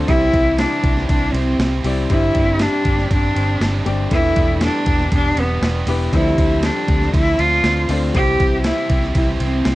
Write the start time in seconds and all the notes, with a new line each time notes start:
0.07 C2 C3 E3 G3 C4 E4 G4 C5, kick, ride
0.32 C2 C4 E4 G4, kick, ride
0.58 G3 C4 D4 E4 G4, snare, ride
0.83 C2 C4 E4 G4, kick, ride
0.97 snare
1.08 C2 C3 G3 C4 D4 E4 G4, kick, ride
1.33 C2 C4 E4 G4, ride
1.37 C4
1.58 C2 G3 C4 E4 G4, snare, ride
1.84 C2 G3 C4 E4 G4 D5, open hi-hat, ride
2.09 G1 G2 D3 G3 C4 D4 E4 G4 C5, kick, ride
2.34 G1 G3 C4 D4 G4, kick, ride
2.59 G3 C4 D4 G4, snare, ride
2.84 G1 G3 C4 D4 G4, kick, ride
2.98 snare
3.10 G1 G2 D3 G3 C4 D4 G4, kick, ride
3.35 G1 G3 C4 D4 G4, ride
3.60 G1 G3 C4 D4 G4, snare, ride
3.84 G1 G3 C4 D4 G4 D5, ride
4.10 E1 E3 G3 A3 B3 D4 E4 F4 G4 A4 B4, kick, ride
4.18 G4
4.35 E1 B3 D4 G4, kick, ride
4.60 G3 B3 D4 G4, snare, ride
4.86 E1 B3 D4 G4, kick, ride
5.00 snare
5.11 E1 E3 G3 B3 D4 G4, kick, ride
5.36 E1 D4 G4, ride
5.40 B3
5.62 E1 G3 B3 D4 G4, snare, ride
5.87 E1 B3 D4 E4 G4 B4, open hi-hat, ride
6.12 D2 D3 F3 G3 C4 D4 E4 G4 A4 C5, kick, ride
6.37 D2 C4 D4 A4, kick, ride
6.63 F3 C4 D4 A4, snare, ride
6.88 D2 C4 D4 A4, kick, ride
7.02 snare
7.13 D2 D3 F3 C4 D4 E4 A4, kick, ride
7.38 D2 C4 D4 F4 A4, ride
7.63 D2 F3 C4 D4 F4 A4, snare, ride
7.89 D2 C4 D4 F4 A4 C5, open hi-hat, ride
8.13 C2 C3 E3 G3 C4 E4 G4 C5, kick, ride
8.39 C2 C4 E4 G4, kick, ride
8.64 G3 C4 E4 G4, snare, ride
8.89 C2 C4 E4 G4, kick, ride
9.02 snare
9.15 C2 C3 E3 G3 C4 E4 G4, kick, ride
9.40 C2 C4 E4 G4, ride
9.64 C2 G3 C4 E4 G4, snare, ride